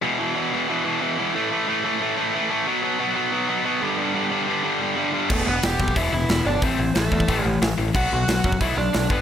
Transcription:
0.02 E2 B2 E3
0.19 E2 B2 E3
0.35 E2 B2 E3
0.52 E2 B2 E3
0.68 E2 B2 E3
0.85 E2 B2 E3
1.02 E2 B2 E3
1.18 E2 B2 E3
1.34 A2 E3 A3
1.51 A2 E3 A3
1.68 A2 E3 A3
1.84 A2 E3 A3
2.01 A2 E3 A3
2.17 A2 E3 A3
2.33 A2 E3 A3
2.50 A2 E3 A3
2.66 B2 F#3 B3
2.82 B2 F#3 B3
2.99 B2 F#3 B3
3.15 B2 F#3 B3
3.31 B2 F#3 B3
3.48 B2 F#3 B3
3.64 B2 F#3 B3
3.81 G2 D3 G3
3.98 G2 D3 G3
4.14 G2 D3 G3
4.30 G2 D3 G3
4.47 G2 D3 G3
4.63 G2 D3 G3
4.81 G2 D3 G3
4.96 G2 D3 G3
5.12 G2 D3 G3
5.30 E1 E2 B2 E3 A3 A4, kick, crash
5.46 E1 E2 B2 B3 B4
5.63 E1 E2 B2 G4 G5, snare, open hi-hat
5.80 B1 E2 B2, kick
5.88 kick
5.96 E1 E2 B2 E3 E4 E5, kick, open hi-hat
6.13 E1 E2 B2 E4 E5
6.29 E1 E2 B2, snare, open hi-hat
6.46 G1 E2 B2 D4 D5
6.62 A1 A2 E3 A3 C4 C5, kick, open hi-hat
6.79 A1 A2 E3
6.95 A1 A2 E3 A3 A4, snare, open hi-hat
7.12 E2 A2 E3, kick
7.20 kick
7.28 A1 A2 E3 A3, kick, open hi-hat
7.43 A1 A2 E3 G4
7.62 A1 A2 E3, snare, open hi-hat
7.78 A1 A2 E3
7.95 B1 B2 F#3 B3 F#4 F#5, kick, crash
8.12 B1 B2 F#3
8.28 B1 B2 F#3, snare, open hi-hat
8.44 F#2 B2 F#3, kick
8.52 kick
8.61 B1 B2 F#3 B3 E4 E5, kick, open hi-hat
8.77 B1 B2 F#3 D4 D5
8.93 B1 B2 F#3, snare, open hi-hat
9.10 G1 G2 D3 G3 B3 B4, kick

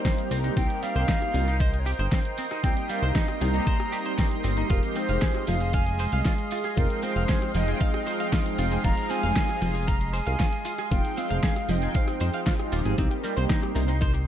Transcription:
Already playing: G3 A#3 C4 D#4 G4 A#4 C5 D#5 G5 C6
0.05 C4, kick, snare, closed hi-hat, shaker
0.18 closed hi-hat, shaker
0.31 C2 C4, open hi-hat, shaker
0.44 D#4, closed hi-hat, shaker
0.56 C2 G3 A#3 C4 D#4 G5, kick, closed hi-hat, shaker
0.70 closed hi-hat, shaker
0.83 G3 F5, open hi-hat, shaker
0.96 C2 C5, closed hi-hat, shaker
1.08 D#4, kick, snare, closed hi-hat, shaker
1.22 cross-stick, closed hi-hat, shaker
1.34 C2 C3 G3 A#3 C4 D#4 F4, open hi-hat, shaker
1.48 D#4, closed hi-hat, shaker
1.60 C5 D#5, kick, closed hi-hat, shaker
1.74 closed hi-hat, shaker
1.79 C#5
1.86 G4 C5, open hi-hat, shaker
1.99 G1 C5, closed hi-hat, shaker
2.12 C4, kick, snare, closed hi-hat, shaker
2.25 closed hi-hat, shaker
2.38 C4, open hi-hat, shaker
2.51 D#4, cross-stick, closed hi-hat, shaker
2.63 C2 G3 A#3 C4 D#4 G4 G5, kick, closed hi-hat, shaker
2.77 closed hi-hat, shaker
2.89 G3 F5, open hi-hat, shaker
3.02 C2 C5, closed hi-hat, shaker
3.15 D#4 D#5, kick, snare, closed hi-hat, shaker
3.28 cross-stick, closed hi-hat, shaker
3.40 C2 C3 G3 A#3 C4 D#4 G4 A#5, open hi-hat, shaker
3.54 D#4, closed hi-hat, shaker
3.67 C5, kick, closed hi-hat, shaker
3.80 cross-stick, closed hi-hat, shaker
3.92 G4, open hi-hat, shaker
4.05 C5, closed hi-hat, shaker
4.18 C4, kick, snare, closed hi-hat, shaker
4.31 closed hi-hat, shaker
4.44 G1 C4, open hi-hat, shaker
4.57 D#4, closed hi-hat, shaker
4.69 F1 F3 G#3 C4 D#4 F4 G4 A#4 F5, kick, closed hi-hat, shaker
4.83 closed hi-hat, shaker
4.96 C4 C5, open hi-hat, shaker
5.09 F1 F5, closed hi-hat, shaker
5.22 G#4, kick, snare, closed hi-hat, shaker
5.23 shaker
5.34 cross-stick, closed hi-hat, shaker
5.47 F1 F3 G#3 C4 D#4 F4 F5, open hi-hat, shaker
5.49 shaker
5.60 G#4, closed hi-hat, shaker
5.62 shaker
5.73 F5 G#5, kick, closed hi-hat, shaker
5.86 closed hi-hat, shaker
5.99 C5, open hi-hat, shaker
6.12 C2 F5, closed hi-hat, shaker
6.25 F4, kick, snare, closed hi-hat, shaker
6.38 closed hi-hat, shaker
6.51 F4, open hi-hat, shaker
6.64 G#4, cross-stick, closed hi-hat, shaker
6.76 F1 F3 G#3 C4 D#4 F4 A#4 G5, kick, closed hi-hat, shaker
6.90 closed hi-hat, shaker
7.03 C4 C5, open hi-hat, shaker
7.16 F1 F5, closed hi-hat, shaker
7.29 G#4, kick, snare, closed hi-hat, shaker
7.42 cross-stick, closed hi-hat, shaker
7.54 F1 F3 G#3 C4 D#4 D#5 G5, open hi-hat, shaker
7.68 G#4, closed hi-hat, shaker
7.74 F5
7.81 D#5 F5, kick, closed hi-hat, shaker
7.94 cross-stick, closed hi-hat, shaker
8.06 C5, open hi-hat, shaker
8.20 F5, closed hi-hat, shaker
8.33 F4, kick, snare, closed hi-hat, shaker
8.46 closed hi-hat, shaker
8.59 F1 F4, open hi-hat, shaker
8.72 G#4, closed hi-hat, shaker
8.83 F1 F3 G#3 C4 D#4 F4 F5 A#5, kick, closed hi-hat, shaker
8.97 closed hi-hat, shaker
9.10 C4 G#5, open hi-hat, shaker
9.23 F1 F5, closed hi-hat, shaker
9.36 G#4, kick, snare, closed hi-hat, shaker
9.49 cross-stick, closed hi-hat, shaker
9.62 F1 F3 G#3 C4 D#4 F4, open hi-hat, shaker
9.75 G#4, closed hi-hat, shaker
9.87 F5 A#5, kick, closed hi-hat, shaker
10.01 closed hi-hat, shaker
10.13 C5 G#5, open hi-hat, shaker
10.26 C2 F5, closed hi-hat, shaker
10.39 F4, kick, snare, closed hi-hat, shaker
10.53 closed hi-hat, shaker
10.65 F4, open hi-hat, shaker
10.78 G#4, cross-stick, closed hi-hat, shaker
10.86 G#5
10.90 F1 F3 G#3 C4 D#4 F4 G5, kick, closed hi-hat, shaker
11.05 closed hi-hat, shaker
11.17 C4 F5, open hi-hat, shaker
11.30 F1 F5, closed hi-hat, shaker
11.43 G#4, kick, snare, closed hi-hat, shaker
11.56 cross-stick, closed hi-hat, shaker
11.68 F1 F3 G#3 C4 D#4 D#5 G5, open hi-hat, shaker
11.82 G#4, closed hi-hat, shaker
11.95 C5 F5, kick, closed hi-hat, shaker
12.08 cross-stick, closed hi-hat, shaker
12.20 F2 C5, open hi-hat, shaker
12.34 F5, closed hi-hat, shaker
12.46 F4, kick, snare, closed hi-hat, shaker
12.59 F3 G#3 C4 D#4 G4, cross-stick, closed hi-hat, shaker
12.72 D#1 F4, open hi-hat, shaker
12.85 G#1 G#4, closed hi-hat, shaker
12.97 C2 G3 A#3 C4 D#4 G4 A#4 D#5 G5 C6, kick, closed hi-hat, shaker
13.11 G4, closed hi-hat, shaker
13.24 G3 A#4, open hi-hat, shaker
13.37 C2 C5, closed hi-hat, shaker
13.49 D#4, kick, snare, closed hi-hat, shaker
13.62 G4, cross-stick, closed hi-hat, shaker
13.75 C2 C3 G3 A#3 C4 D#4 F4 A#4, open hi-hat, shaker
13.88 D#4 C5, closed hi-hat, shaker
14.01 D#4 C5, kick, closed hi-hat, shaker
14.14 G4, closed hi-hat, shaker

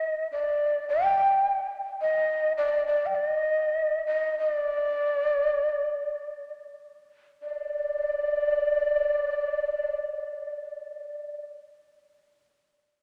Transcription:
Already playing: D#5
0.32 D5
0.89 G5
2.01 D#5
2.57 D5
2.87 D5
3.06 G5
3.15 D5
3.26 D#5
4.07 D#5
4.39 D#5
4.52 D5
7.42 D5

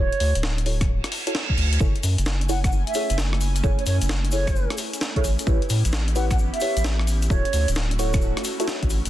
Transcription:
Already playing: D1 E4 F#4 A4 C#5
0.12 closed hi-hat
0.20 D2, open hi-hat
0.35 D1, closed hi-hat
0.43 snare
0.58 closed hi-hat
0.66 E4 F#4 A4 C#5, open hi-hat
0.81 kick, cross-stick, closed hi-hat
0.89 reverse cymbal
1.04 cross-stick, closed hi-hat
1.12 open hi-hat
1.27 E4 F#4 A4 C#5, closed hi-hat
1.35 snare
1.50 kick
1.57 D2, open hi-hat
1.73 closed hi-hat
1.80 F#1 A3 C#4 E4 G#4 A4 C#5 G#5, kick, shaker
1.96 closed hi-hat
2.03 F#2, open hi-hat, shaker
2.18 F#1, closed hi-hat, shaker
2.26 snare, shaker
2.41 closed hi-hat
2.49 E4 G#4 A4 C#5 F#5, open hi-hat, shaker
2.64 F#5, kick, cross-stick, closed hi-hat, shaker
2.72 shaker
2.87 E5, closed hi-hat
2.94 E4 G#4 A4 C#5, open hi-hat, shaker
3.10 F#1, closed hi-hat, shaker
3.18 snare, shaker
3.33 cross-stick
3.41 open hi-hat, shaker
3.56 closed hi-hat, shaker
3.64 F#1 E4 G#4 A4 C#5, kick, shaker
3.79 C#5, closed hi-hat
3.86 F#2 C#5, open hi-hat, shaker
4.01 F#1, closed hi-hat, shaker
4.09 snare, shaker
4.25 closed hi-hat
4.32 E4 G#4 A4 C#5, open hi-hat, shaker
4.47 kick, cross-stick, closed hi-hat, shaker
4.56 shaker
4.70 cross-stick, closed hi-hat
4.78 open hi-hat, shaker
4.93 closed hi-hat, shaker
5.01 snare, shaker
5.16 E4 G#4 A4 C#5, kick, closed hi-hat
5.24 A1, open hi-hat, shaker
5.39 closed hi-hat, shaker
5.47 A1 B3 C#4 E4 G4 B4 C#5, kick, shaker
5.62 closed hi-hat
5.70 A2, open hi-hat, shaker
5.85 A1, closed hi-hat, shaker
5.93 snare
6.08 closed hi-hat
6.16 E4 G4 B4 C#5 F#5, open hi-hat, shaker
6.31 F#5, kick, cross-stick, closed hi-hat, shaker
6.39 shaker
6.54 E5, closed hi-hat
6.60 E4 G4 B4 C#5, open hi-hat, shaker
6.77 A1, closed hi-hat, shaker
6.84 snare, shaker
6.99 cross-stick
7.07 open hi-hat, shaker
7.22 closed hi-hat, shaker
7.30 D1 A3 E4 F#4 A4 C#5, kick, shaker
7.45 closed hi-hat
7.53 D2, open hi-hat, shaker
7.68 D1, closed hi-hat, shaker
7.75 snare, shaker
7.91 closed hi-hat
7.99 E4 F#4 A4 C#5, open hi-hat, shaker
8.13 kick, cross-stick, closed hi-hat, shaker
8.22 shaker
8.37 cross-stick, closed hi-hat
8.44 open hi-hat, shaker
8.60 E4 F#4 A4 C#5, closed hi-hat, shaker
8.68 snare, shaker
8.83 A1, kick, closed hi-hat
8.90 open hi-hat, shaker
9.05 D1, closed hi-hat, shaker

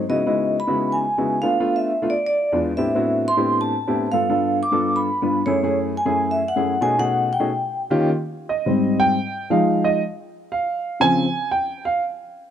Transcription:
0.09 C#3 G#3 B3 D#4 E4 F#4 D#5
0.26 C#3 G#3 B3 D#4 E4 F#4
0.60 B5
0.67 C#3 G#3 B3 D#4 E4 F#4
0.92 G#5
1.18 C#3 G#3 B3 D#4 E4 F#4
1.42 A3 B3 D4 F4 F5
1.60 A3 B3 D4 F4
1.76 E5
2.02 A3 B3 D4 F4
2.10 D5
2.27 D5
2.52 E2 G#3 B3 D4 F4
2.77 A2 B3 C4 D4 E4 G4 E5
2.95 A2 B3 C4 D4 E4 F#4
3.28 C6
3.37 A2 B3 C4 D4 E4 G4
3.61 A5
3.87 A2 B3 C4 D4 E4 G4
4.12 G2 B3 D4 F4 A4 F5
4.29 G2 B3 D4 F4 A4
4.63 D6
4.72 G2 B3 D4 F4 A4
4.96 B5
5.22 G2 B3 D4 F4 B4
5.46 F#2 A3 C#4 E4 G#4 C#5
5.63 F#2 A3 C#4 E4 G#4
5.97 G#5
6.05 F#2 A3 C#4 E4 G#4
6.31 E5
6.48 F#5
6.56 F#2 A3 C#4 E4 G#4
6.81 B2 A3 C#4 D#4 F#4 G#4 G#5
6.98 B2 A3 C#4 D#4 F#4 G#4 F#5
7.33 G5
7.39 B2 A3 C#4 D#4 F#4 G#4
7.90 D#3 A#3 C#4 F4 G4
8.49 D#5
8.66 G#2 G3 C4
9.00 G5
9.50 F3 G#3 D#4 F5
9.84 D#5
10.52 F5
11.00 C#3 F3 C4 G#5
11.51 G5
11.85 F5

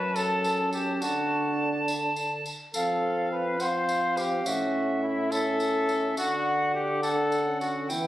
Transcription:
Already playing: F#2 C#4 B4 A5
0.15 C#4 A4 A5, tambourine
0.44 tambourine
0.73 G4, tambourine
1.01 D3 D4 F#4 A5, tambourine
1.88 tambourine
2.16 tambourine
2.46 tambourine
2.74 F3 C4 A4 F5, tambourine
3.32 B4
3.60 C4 C5 F#5, tambourine
3.64 F5
3.89 tambourine
4.17 G4, tambourine
4.45 A2 C#4 F#4 E5, tambourine
5.03 E4
5.32 C#4 A4 E5, tambourine
5.60 tambourine
5.89 tambourine
6.17 D3 D4 F#4 F#5, tambourine
6.74 G4
7.02 D4 A4 F#5 G5, tambourine
7.32 tambourine
7.46 C#4
7.61 F#4, tambourine
7.89 E3 B3 E4 G5, tambourine

